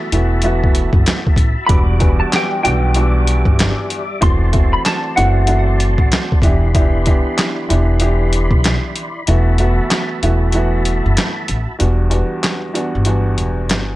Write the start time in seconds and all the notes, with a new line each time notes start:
Already playing: F#4 E5 A5 B5
0.12 E1 E3 A3 B3 E4 F#4, closed hi-hat
0.42 E3 A3 B3 E4 F#4, closed hi-hat
0.64 kick
0.75 closed hi-hat
0.93 F#1, kick
1.06 snare, clap, closed hi-hat
1.27 kick
1.36 A1, kick, closed hi-hat
1.67 E1 E2 G3 B3 D4 F#4 D5 B5 D6, kick, closed hi-hat
1.71 E5
2.00 E2 G3 B3 D4 F#4, kick, closed hi-hat
2.20 A5
2.33 G5, snare, clap, closed hi-hat
2.63 B1 E2 G3 B3 D4 F#4 G5, closed hi-hat
2.95 E2 G3 B3 D4 F#4, closed hi-hat
3.27 closed hi-hat
3.45 G1, kick
3.59 snare, clap, closed hi-hat
3.90 closed hi-hat
4.21 E1 E3 A3 C4 E4 F#4 D5 A5 C6, kick, closed hi-hat
4.52 E3 A3 C4 E4 F#4, kick, closed hi-hat
4.73 B5
4.85 A5, snare, clap, closed hi-hat
5.16 F#1 E3 A3 C4 E4 F#4 F#5, closed hi-hat
5.47 E3 A3 C4 E4 F#4, closed hi-hat
5.80 closed hi-hat
5.98 A1, kick
6.12 snare, clap, closed hi-hat
6.32 kick
6.42 E1 E3 B3 D4 E4 G4 B5, kick, closed hi-hat
6.74 E3 B3 D4 E4 G4, kick, closed hi-hat
7.06 E3 B3 D4 E4 G4, kick, closed hi-hat
7.38 snare, clap, closed hi-hat
7.69 E1 E3 B3 D4 E4 G4, closed hi-hat
8.00 E3 B3 D4 E4 G4, closed hi-hat
8.33 closed hi-hat
8.51 B1, kick
8.64 snare, clap, closed hi-hat
8.96 closed hi-hat
9.26 E1 E3 A3 B3 E4 F#4 E5 A5, closed hi-hat
9.58 E3 A3 B3 E4 F#4, closed hi-hat
9.91 snare, clap, closed hi-hat
10.23 E1 E3 A3 B3 E4 F#4, closed hi-hat
10.52 E3 A3 B3 E4 F#4, closed hi-hat
10.85 closed hi-hat
11.06 F#1
11.17 snare, clap, closed hi-hat
11.48 A1, closed hi-hat
11.79 E1 E2 G3 B3 D4 F#4, closed hi-hat
12.10 E2 G3 B3 D4 F#4, closed hi-hat
12.43 snare, clap, closed hi-hat
12.74 E2 G3 B3 D4 F#4, closed hi-hat
12.95 G1
13.05 E2 G3 B3 D4 F#4, closed hi-hat
13.38 E1, closed hi-hat
13.69 G1, snare, clap, closed hi-hat